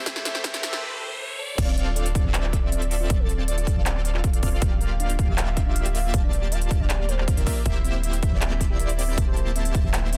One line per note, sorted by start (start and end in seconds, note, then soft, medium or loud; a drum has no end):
0.00 0.78 C3 medium
0.00 0.80 F3 medium
0.00 0.80 A3 medium
0.00 0.80 D4 medium
0.00 riser medium
0.06 0.23 D1 loud
0.06 0.24 A3 loud
0.06 0.24 E4 medium
0.06 0.24 G4 medium
0.06 0.11 A4 medium
0.06 0.24 C5 medium
0.06 0.24 E5 loud
0.06 kick medium
0.06 snare loud
0.06 closed hi-hat medium
0.16 snare medium
0.25 0.42 D1 medium
0.25 0.43 A3 loud
0.25 0.43 E4 medium
0.25 0.43 G4 medium
0.25 0.30 A4 medium
0.25 0.43 C5 medium
0.25 0.43 E5 loud
0.25 snare loud
0.25 closed hi-hat medium
0.35 snare medium
0.44 0.61 D1 loud
0.44 0.62 A3 loud
0.44 0.62 E4 medium
0.44 0.62 G4 medium
0.44 0.62 C5 medium
0.44 0.62 E5 loud
0.44 kick loud
0.44 snare loud
0.44 closed hi-hat medium
0.54 snare medium
0.54 closed hi-hat medium
0.63 0.80 D1 loud
0.63 0.81 A3 loud
0.63 0.81 E4 loud
0.63 0.81 G4 medium
0.63 0.68 A4 medium
0.63 0.81 C5 medium
0.63 0.81 E5 loud
0.63 snare loud
0.63 closed hi-hat medium
0.73 snare medium
0.82 0.87 A4 medium
1.01 1.06 A4 medium
1.20 1.25 A4 medium
1.39 1.44 A4 medium
1.58 2.23 D1 loud
1.58 1.61 C4 medium
1.58 2.22 C4 medium
1.58 2.22 F4 medium
1.58 2.22 A4 medium
1.58 2.22 D5 medium
1.58 1.90 D5 loud
1.58 2.22 F5 loud
1.58 kick loud
1.58 closed hi-hat medium
1.58 crash loud
1.68 1.70 C4 loud
1.77 closed hi-hat medium
1.87 1.89 F4 loud
1.96 2.01 A4 medium
1.96 2.12 D5 medium
1.96 closed hi-hat medium
2.06 closed hi-hat medium
2.15 2.18 C4 medium
2.15 2.31 D5 medium
2.15 kick loud
2.15 closed hi-hat medium
2.25 3.08 D1 medium
2.25 2.27 C4 loud
2.25 3.08 C4 loud
2.25 3.08 F4 medium
2.25 3.08 A4 medium
2.25 3.08 D5 medium
2.25 3.08 E5 loud
2.34 2.58 D5 medium
2.34 clap loud
2.34 closed hi-hat medium
2.44 2.46 F4 loud
2.44 clap soft
2.53 2.58 A4 medium
2.53 kick medium
2.53 closed hi-hat medium
2.63 2.86 D5 loud
2.72 2.75 C4 medium
2.72 closed hi-hat medium
2.82 2.84 C4 loud
2.82 closed hi-hat medium
2.91 3.21 D5 loud
2.91 open hi-hat medium
3.00 3.03 F4 loud
3.10 3.75 D1 loud
3.10 3.74 C4 medium
3.10 3.74 F4 medium
3.10 3.74 A4 medium
3.10 3.74 D5 medium
3.10 3.74 A5 medium
3.10 3.74 A5 loud
3.10 kick loud
3.10 closed hi-hat medium
3.19 3.43 A4 loud
3.29 3.32 C4 medium
3.29 closed hi-hat medium
3.38 3.41 C4 loud
3.48 3.72 D5 loud
3.48 closed hi-hat medium
3.57 3.60 F4 loud
3.57 closed hi-hat medium
3.67 3.72 A4 medium
3.67 kick loud
3.67 closed hi-hat medium
3.76 4.60 D1 medium
3.76 4.60 C4 medium
3.76 4.60 F4 medium
3.76 4.60 A4 medium
3.76 4.00 D5 medium
3.76 4.60 D5 medium
3.76 4.60 F5 medium
3.86 3.89 C4 medium
3.86 clap loud
3.86 closed hi-hat medium
3.95 3.98 C4 loud
4.05 4.29 D5 loud
4.05 closed hi-hat medium
4.14 4.17 F4 loud
4.14 clap soft
4.24 4.28 A4 medium
4.24 kick loud
4.24 closed hi-hat medium
4.33 4.57 D5 loud
4.33 closed hi-hat medium
4.43 4.46 C4 medium
4.43 kick medium
4.43 open hi-hat medium
4.52 4.55 C4 loud
4.62 5.27 D1 loud
4.62 5.26 A#3 loud
4.62 5.26 F4 medium
4.62 5.26 G4 medium
4.62 5.26 D5 medium
4.62 4.93 F5 loud
4.62 5.26 F5 loud
4.62 kick loud
4.62 closed hi-hat medium
4.71 4.74 G4 loud
4.81 4.85 A#4 medium
4.81 closed hi-hat medium
5.00 5.03 D4 medium
5.00 5.16 F5 medium
5.00 closed hi-hat medium
5.09 5.12 D4 loud
5.09 closed hi-hat medium
5.19 5.35 F5 medium
5.19 kick loud
5.19 closed hi-hat medium
5.28 6.12 D1 loud
5.28 6.11 A#3 medium
5.28 6.11 F4 medium
5.28 6.11 G4 medium
5.28 5.31 G4 loud
5.28 6.11 D5 medium
5.28 6.11 E5 loud
5.28 6.12 E5 loud
5.38 5.42 A#4 medium
5.38 5.62 F5 medium
5.38 clap loud
5.38 closed hi-hat medium
5.47 clap soft
5.57 5.60 D4 medium
5.57 kick medium
5.57 closed hi-hat medium
5.66 5.69 D4 loud
5.66 5.90 F5 loud
5.76 closed hi-hat medium
5.85 5.88 G4 loud
5.85 closed hi-hat medium
5.95 5.99 A#4 medium
5.95 6.19 F5 loud
5.95 open hi-hat medium
6.14 6.78 D1 loud
6.14 6.78 A#3 medium
6.14 6.16 D4 medium
6.14 6.78 F4 medium
6.14 6.78 G4 medium
6.14 6.78 D5 medium
6.14 6.78 A5 medium
6.14 6.78 A5 loud
6.14 kick loud
6.14 closed hi-hat medium
6.23 6.26 D4 loud
6.23 6.53 D5 loud
6.33 closed hi-hat medium
6.42 6.45 G4 loud
6.52 6.56 A#4 medium
6.52 6.82 F5 medium
6.52 closed hi-hat medium
6.62 closed hi-hat medium
6.71 6.73 D4 medium
6.71 kick loud
6.71 closed hi-hat medium
6.80 7.35 D1 loud
6.80 7.35 A#3 medium
6.80 6.83 D4 loud
6.80 7.35 F4 medium
6.80 7.35 G4 medium
6.80 7.10 D5 loud
6.80 7.35 D5 medium
6.80 7.35 F5 medium
6.90 clap loud
6.90 closed hi-hat medium
6.99 7.02 G4 loud
7.09 7.11 A#4 loud
7.09 7.33 C5 loud
7.09 closed hi-hat medium
7.18 clap soft
7.28 7.35 D4 loud
7.28 kick loud
7.28 closed hi-hat medium
7.37 7.45 D1 loud
7.37 7.47 A#3 medium
7.37 7.44 D4 medium
7.37 7.47 F4 medium
7.37 7.47 G4 medium
7.37 7.61 A#4 loud
7.37 7.47 D5 medium
7.37 7.47 E5 medium
7.37 closed hi-hat medium
7.47 kick medium
7.47 open hi-hat medium
7.56 7.63 D5 loud
7.66 8.30 D1 loud
7.66 8.30 A#3 medium
7.66 8.30 E4 medium
7.66 8.30 G4 medium
7.66 7.70 A#4 medium
7.66 8.30 C5 medium
7.66 8.30 E5 loud
7.66 7.97 E5 loud
7.66 kick loud
7.66 closed hi-hat medium
7.85 7.87 C4 medium
7.85 closed hi-hat medium
7.94 7.97 C4 loud
8.04 8.19 E5 medium
8.04 closed hi-hat medium
8.13 8.16 G4 loud
8.13 closed hi-hat medium
8.23 8.39 E5 medium
8.23 kick loud
8.23 closed hi-hat medium
8.32 9.16 D1 loud
8.32 9.15 A#3 loud
8.32 9.15 E4 medium
8.32 9.15 G4 medium
8.32 9.15 C5 medium
8.32 9.15 D5 loud
8.42 8.44 C4 medium
8.42 8.65 E5 medium
8.42 clap loud
8.42 closed hi-hat medium
8.51 8.54 C4 loud
8.51 clap soft
8.61 kick medium
8.61 closed hi-hat medium
8.70 8.73 G4 loud
8.70 8.94 E5 loud
8.80 8.84 A#4 medium
8.80 closed hi-hat medium
8.89 closed hi-hat medium
8.98 9.01 C4 medium
8.98 9.22 E5 medium
8.98 open hi-hat medium
9.08 9.11 C4 loud
9.17 9.82 D1 loud
9.17 9.82 A#3 medium
9.17 9.82 E4 medium
9.17 9.82 G4 medium
9.17 9.82 C5 medium
9.17 9.82 A5 loud
9.17 kick loud
9.17 closed hi-hat medium
9.27 9.30 G4 loud
9.27 9.51 C5 loud
9.36 9.41 A#4 medium
9.36 closed hi-hat medium
9.55 9.58 C4 medium
9.55 9.79 E5 loud
9.55 closed hi-hat medium
9.65 9.68 C4 loud
9.65 closed hi-hat medium
9.75 kick loud
9.75 closed hi-hat medium
9.84 10.17 D1 loud
9.84 10.17 A#3 medium
9.84 10.17 E4 medium
9.84 9.87 G4 loud
9.84 10.17 G4 medium
9.84 10.17 C5 medium
9.84 10.17 E5 medium
9.84 10.08 E5 loud
9.93 9.98 A#4 medium
9.93 clap loud
9.93 closed hi-hat medium
10.13 10.15 C4 medium
10.13 10.17 E5 loud
10.13 closed hi-hat medium